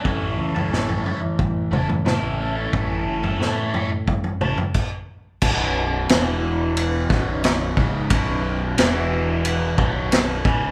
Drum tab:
CC |----------------|------------x---|x---------------|----------------|
RD |----------------|----------------|----b---b---b---|b---b---b---b---|
SD |----o-------o---|----o-----------|----o-----o-o---|----o-------o---|
T2 |----------o-o---|----------o-----|----------------|----------------|
FT |o--o-oo-o--o----|o--o--o-oo-o----|----------------|----------------|
BD |o-------o-------|o-------o---o---|o---------o---o-|o---------o---o-|